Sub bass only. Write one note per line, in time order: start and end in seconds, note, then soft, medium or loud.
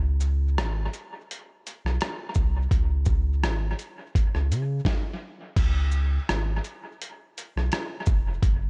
0.00 0.59 C#2 loud
0.58 0.88 G#1 medium
1.85 1.98 B1 medium
2.36 2.67 C2 medium
2.72 3.45 C#2 loud
3.43 3.74 G#1 loud
4.35 4.52 C#2 medium
4.50 4.81 C#3 loud
5.57 6.19 C#2 loud
6.30 6.60 G#1 loud
7.56 7.69 B1 medium
8.07 8.38 F1 medium
8.43 8.70 F#1 loud